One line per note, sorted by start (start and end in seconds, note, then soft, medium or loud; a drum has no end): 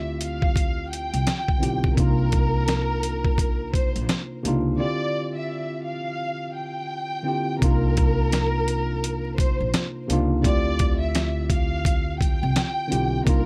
0.00 1.09 D2 loud
0.00 0.26 D3 medium
0.00 0.26 C4 medium
0.00 0.27 E4 medium
0.00 0.28 F4 medium
0.00 0.28 G4 medium
0.00 0.18 E5 medium
0.21 0.88 F5 medium
0.21 closed hi-hat medium
0.42 kick medium
0.56 kick medium
0.56 closed hi-hat medium
0.90 1.93 G5 medium
0.90 closed hi-hat medium
1.13 1.25 C2 medium
1.13 closed hi-hat soft
1.27 snare loud
1.27 closed hi-hat medium
1.48 kick medium
1.58 1.90 D3 medium
1.58 1.90 C4 medium
1.58 1.91 E4 medium
1.58 1.91 F4 medium
1.62 1.92 B1 medium
1.62 1.92 G4 medium
1.62 closed hi-hat medium
1.84 kick medium
1.95 3.91 C2 loud
1.95 3.08 C3 medium
1.95 3.09 A#3 medium
1.95 3.10 D4 medium
1.95 3.10 D#4 medium
1.95 3.69 A#4 loud
1.95 kick loud
1.95 closed hi-hat medium
2.00 3.11 F4 medium
2.32 kick loud
2.32 closed hi-hat medium
2.68 snare loud
2.68 closed hi-hat medium
3.03 closed hi-hat medium
3.24 kick medium
3.38 kick medium
3.38 closed hi-hat loud
3.74 4.06 C5 medium
3.74 kick medium
3.74 closed hi-hat medium
3.96 4.07 A#1 medium
3.96 closed hi-hat soft
4.09 snare loud
4.09 closed hi-hat medium
4.43 4.75 C#2 medium
4.43 4.73 C3 medium
4.43 4.74 A#3 medium
4.43 4.74 D4 medium
4.43 4.75 D#4 medium
4.43 closed hi-hat medium
4.48 4.76 F4 loud
4.76 5.90 D3 medium
4.76 5.91 C4 medium
4.76 5.92 E4 medium
4.76 5.92 F4 medium
4.76 5.33 D5 loud
4.81 5.93 G4 medium
5.36 5.82 E5 medium
5.85 6.52 F5 medium
6.56 7.58 G5 medium
7.23 7.54 D3 medium
7.23 7.55 C4 medium
7.23 7.56 E4 medium
7.23 7.56 F4 medium
7.28 7.57 G4 medium
7.59 9.56 C2 loud
7.59 8.73 C3 medium
7.59 8.74 A#3 medium
7.59 8.74 D4 medium
7.59 8.75 D#4 medium
7.59 9.34 A#4 loud
7.59 kick loud
7.59 closed hi-hat medium
7.64 8.76 F4 medium
7.97 kick loud
7.97 closed hi-hat medium
8.32 snare loud
8.32 closed hi-hat medium
8.68 closed hi-hat medium
9.04 closed hi-hat loud
9.38 9.70 C5 medium
9.38 kick medium
9.38 closed hi-hat medium
9.60 9.72 A#1 medium
9.74 snare loud
9.74 closed hi-hat medium
10.08 10.39 C#2 loud
10.08 10.38 C3 medium
10.08 10.38 A#3 medium
10.08 10.39 D4 medium
10.08 10.40 D#4 medium
10.08 closed hi-hat medium
10.13 10.40 F4 loud
10.41 12.38 D2 loud
10.41 11.55 D3 medium
10.41 11.56 C4 medium
10.41 11.56 E4 medium
10.41 11.57 F4 medium
10.41 kick loud
10.41 closed hi-hat medium
10.45 11.58 G4 medium
10.45 10.98 D5 loud
10.79 kick loud
10.79 closed hi-hat medium
11.00 11.47 E5 medium
11.15 snare loud
11.15 closed hi-hat medium
11.50 12.17 F5 medium
11.50 kick loud
11.50 closed hi-hat medium
11.85 kick medium
11.85 closed hi-hat loud
12.19 13.22 G5 medium
12.19 kick medium
12.19 closed hi-hat medium
12.43 12.54 C2 loud
12.56 snare loud
12.56 closed hi-hat loud
12.88 13.19 D3 medium
12.88 13.20 C4 medium
12.88 13.20 E4 medium
12.88 13.21 F4 medium
12.92 13.22 B1 loud
12.92 13.21 G4 medium
12.92 closed hi-hat medium
13.24 13.46 C2 loud
13.24 13.46 C3 medium
13.24 13.46 A#3 medium
13.24 13.46 D4 medium
13.24 13.46 D#4 medium
13.24 13.46 A#4 loud
13.24 kick loud
13.24 closed hi-hat medium
13.29 13.46 F4 medium